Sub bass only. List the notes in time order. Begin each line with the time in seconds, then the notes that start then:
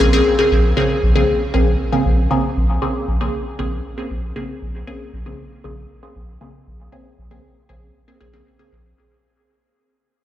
0.00 A#1
0.51 A#1
1.03 A#1
1.54 A#1
2.05 A#1
2.56 A#1
3.08 A#1
3.59 A#1
4.10 A#1
4.62 A#1
5.13 A#1
5.64 A#1
6.15 A#1
6.67 A#1
7.18 A#1
7.69 A#1
8.20 A#1
8.72 A#1